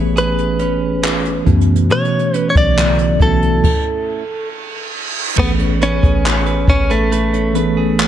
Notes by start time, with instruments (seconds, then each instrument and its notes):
Already playing: 808-style bass A1, tine electric piano E3 A3 B3 C#4 G4 G#4, clean electric guitar A3 C#4 G#4 B4
0.16 clean electric guitar G#4 B4, closed hi-hat
0.38 closed hi-hat
0.59 clean electric guitar C#4, closed hi-hat
1.03 clean electric guitar G#4, clap, closed hi-hat
1.25 closed hi-hat
1.45 808-style bass F#2, clean electric guitar B2, tine electric piano E3 A3 B3 C#4, kick, closed hi-hat
1.49 tine electric piano F#4
1.61 closed hi-hat
1.76 closed hi-hat
1.90 808-style bass B2, clean electric guitar B2 C#5, closed hi-hat
2.05 closed hi-hat
2.19 closed hi-hat
2.34 clean electric guitar C#4 B4, closed hi-hat
2.50 clean electric guitar C#5
2.55 808-style bass B1, clean electric guitar D5, kick, closed hi-hat
2.75 tine electric piano C#3 E3 A3 B3 E4, clean electric guitar A3, clap, closed hi-hat
2.99 closed hi-hat
3.19 808-style bass B1, tine electric piano E3 A3 B3 C#4 F#4, clean electric guitar E4 A4, kick, closed hi-hat
3.42 closed hi-hat
3.64 kick, crash, reverse cymbal
5.36 808-style bass A1, tine electric piano E3 A3 B3 C4, clean electric guitar A3 B3 B4, kick, crash
5.40 tine electric piano G#4
5.46 tine electric piano C#4
5.59 clean electric guitar C#4, closed hi-hat
5.81 clean electric guitar C#4 B4, closed hi-hat
6.03 808-style bass A1, clean electric guitar G#4, kick, closed hi-hat
6.25 clean electric guitar C#4, clap, closed hi-hat
6.46 clean electric guitar B4, closed hi-hat
6.68 808-style bass A1, clean electric guitar C#4, kick, closed hi-hat
6.90 clean electric guitar A3 B4, closed hi-hat
7.12 clean electric guitar A3 B4, closed hi-hat
7.33 clean electric guitar C#4, closed hi-hat
7.53 tine electric piano E3 A3 B3 C#4, clean electric guitar B4, closed hi-hat
7.57 tine electric piano G#4
7.77 clean electric guitar G#4
7.99 clean electric guitar C#4, clap, closed hi-hat